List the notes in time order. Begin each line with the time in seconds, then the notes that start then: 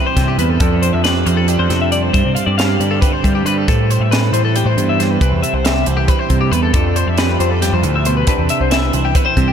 Already playing: E3 G3 C4 G4
0.07 C5
0.17 G2 C3, kick, snare, closed hi-hat
0.28 G4
0.38 E2 B3 B4, closed hi-hat
0.50 A4
0.60 F2 D4 A4, kick, closed hi-hat
0.82 C5, closed hi-hat
0.93 F2 E5
1.04 G4 B4, snare, closed hi-hat
1.26 F2 F3 C5, closed hi-hat
1.37 A4
1.48 D4 G4, closed hi-hat
1.59 F2 C5
1.70 F2 C3, snare, closed hi-hat
1.81 E5
1.92 G3 D5, closed hi-hat
2.03 C5
2.13 G2 C4 C5, kick, closed hi-hat
2.25 C3
2.35 F5, closed hi-hat
2.46 G2 D5
2.58 G4 F5, snare, closed hi-hat
2.80 G2 D3 D5, closed hi-hat
2.91 A4
3.01 C4 B4, kick, closed hi-hat
3.12 C5
3.24 G2 G3, kick, closed hi-hat
3.35 G4
3.45 G2 G3 B4, closed hi-hat
3.58 A4
3.68 A2 C4 A4, kick, closed hi-hat
3.90 C5, closed hi-hat
4.00 A2 E5
4.11 E4 B4, snare, closed hi-hat
4.32 A2 E3 C5, closed hi-hat
4.45 A4
4.56 C4 G4, closed hi-hat
4.66 A2 C5
4.77 E2 G2, closed hi-hat
4.89 E5
5.00 G3 C5, snare, closed hi-hat
5.11 B4
5.21 C2 C3 C4 B4, kick, closed hi-hat
5.32 E2
5.43 E5, closed hi-hat
5.54 C2 C5
5.65 G4 E5, snare, closed hi-hat
5.86 C2 E3 C5, closed hi-hat
5.97 G4
6.08 C4 B4, kick, closed hi-hat
6.19 C5
6.30 G2 C3, kick, closed hi-hat
6.41 G4
6.52 E2 B3 B4, closed hi-hat
6.63 A4
6.73 F2 D4 A4, kick, closed hi-hat
6.96 C5, closed hi-hat
7.07 F2 E5
7.18 G4 B4, snare, closed hi-hat
7.38 F2 F3 C5, closed hi-hat
7.51 A4
7.61 G2 G4, snare, closed hi-hat
7.73 F2 C5
7.83 D2 A2, closed hi-hat
7.96 E5
8.05 B2 C5, closed hi-hat
8.17 B4
8.27 C2 C3 D4 B4, kick, closed hi-hat
8.38 E2
8.49 E5, closed hi-hat
8.61 C2 C5
8.71 E4 E5, snare, closed hi-hat
8.93 C2 E3 C5, closed hi-hat
9.05 G4
9.15 B3 B4, kick, closed hi-hat
9.25 D4 C5
9.36 G2 C3, kick, closed hi-hat
9.48 G4